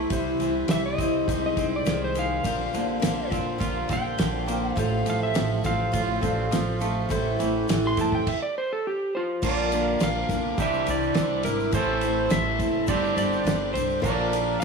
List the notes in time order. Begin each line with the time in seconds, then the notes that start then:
Already playing: E3 A3 C4 E4 A4
0.10 C2 C3 E3 G3 C4 E4 G4 C5, kick, ride, shaker
0.39 C2 E3 C5, ride, shaker
0.43 G3 C4 E4
0.68 C2 E3 G3 C4 E4 E5, snare, ride, shaker
0.72 C5
0.86 D#5
0.98 C2 C4 E4 C5, kick, ride, shaker
1.03 G3
1.25 C2 D#4 G#4 C5, kick, ride
1.29 C3 G#3 C4 D#4 G#4 C5, shaker
1.46 D#5
1.56 C2 C4 G#4 C5, kick, ride, shaker
1.61 D#4
1.76 D5
1.85 C2 D#3 C4 D#4 G#4 C5, snare, ride, shaker
2.04 C5
2.15 G#3 D#4 G#4 C5 F5, ride, shaker
2.43 A#1 A#2 D3 A#3 C4 D4 A#4 C5, kick, ride, shaker
2.47 F4
2.73 A#1 D3 C4 F4 C5, ride, shaker
2.77 A#3
3.00 A#1 D3 A#3 C4 F4 C5, snare, ride
3.04 shaker
3.30 A#1 A#3 C4 F4 C5, kick, ride, shaker
3.58 A#1 A#2 D3 A#3 C4 F4 C5, kick, ride, shaker
3.88 A#1 A#3 C4 F4 C5, kick, ride, shaker
3.93 G5
4.18 A#1 D3 A#3 C4 F4 C5, snare, ride, shaker
4.46 A#3 C4 F4 C5, ride, shaker
4.72 A2 F5
4.76 A1 F3 A3 C4 F4 A4 C5, kick, ride, shaker
5.06 A1 F3 A3 C4 F4 A4, ride, shaker
5.10 F5
5.23 E5
5.34 A1 F3 A3 C4 F4 A4, snare, ride, shaker
5.64 A1 A3 C4 F4 A4 F5, kick, ride, shaker
5.92 A1 A2 F3 A3 C4 F4 A4, kick, ride, shaker
6.21 A1 A3 C4 F4 A4 D5, kick, ride, shaker
6.51 A1 F3 A3 C4 F4 A4, snare, ride, shaker
6.80 A3 C4 F4 A4, ride, shaker
7.08 A1 A2 E3 A3 C4 E4 A4 C5, kick, ride, shaker
7.36 A1 E3 A3 C4 E4 A4, ride, shaker
7.67 A1 E3 A3 C4 E4 A4, snare, ride, shaker
7.87 C6
7.97 A1 A3 C4 E4 A4 A5, kick, ride, shaker
8.12 G5, kick
8.27 E5, kick, crash
8.42 D5
8.58 C5
8.73 A4
8.87 G4
9.15 F4 C5
9.42 A#1 A#2 D3 F3 A#3 D4 F4 A#4 D5 F5 D6, kick, crash, shaker
9.70 A#3 D4 F4 A#4, ride, shaker
9.99 A#1 A#3 D4 F4 A#4 F5, snare, ride, shaker
10.28 B1 A#3 D4 F4 A#4, kick, ride, shaker
10.57 C2 C3 E3 G3 D4 E4 G4 C5 D5, kick, ride, shaker
10.61 C5 E5
10.73 shaker
10.85 C2 G3 D4 E4 C5, ride, shaker
10.90 D5
11.02 shaker
11.14 C2 G3 D4 E4 C5, snare, ride, shaker
11.43 G#1 G3 D4 E4 A#4 C5, ride, shaker
11.60 shaker
11.71 A1 A2 E3 A3 C4 E4 A4 C5 E5, kick, ride, shaker
11.76 A4 A5 E6
12.01 C4 E4 C5, ride, shaker
12.06 A3
12.30 A1 A3 C4 E4 E5, snare, ride, shaker
12.34 C5
12.59 F#1 A3 C4 E4 C5, kick, ride, shaker
12.87 G1 G2 D3 G3 C4 D4 G4 C5 D5 G5, kick, ride, shaker
12.92 D6
13.04 shaker
13.17 G1 D4 G4 C5 D5, ride, shaker
13.33 shaker
13.44 G1 G3 D4 G4 C5, snare, ride, shaker
13.73 C2 D4 G4 C5, ride, shaker
13.90 shaker
14.00 A#1 A#2 D3 F3 A#3 D4 F4 A#4 D5, kick, ride
14.04 A#4 D5 F5, shaker
14.31 A#3 D4 F4 A#4, ride, shaker
14.60 A#3 F5